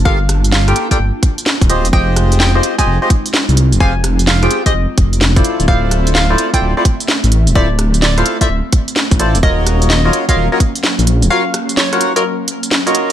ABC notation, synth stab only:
X:1
M:4/4
L:1/16
Q:"Swing 16ths" 1/4=128
K:Dphr
V:1 name="Synth stab"
[FGABf] z4 [FGABg]2 [FGABd] z6 [FG_Ace] z | [FG_Ace]4- [FGAce] [FGAce]2 [FGAce]2 [FGAce] z6 | [FG_Acf] z4 [FGAcg]2 [FGAce] z4 z [=EF=Acd]3 | [=EFAcd]4- [EFAcd] [EFAcd]2 [EFAcd]2 [EFAcd] z6 |
[=EFAc=e] z4 [EFAcf]2 [EFAcd] z6 [EFAcd] z | [F_GB_de]4- [FGBde] [FGBde]2 [FGBde]2 [FGBde] z6 | [F_GB_df] z4 [FGBd_g]2 [FGBde] z4 z [FGBde]3 |]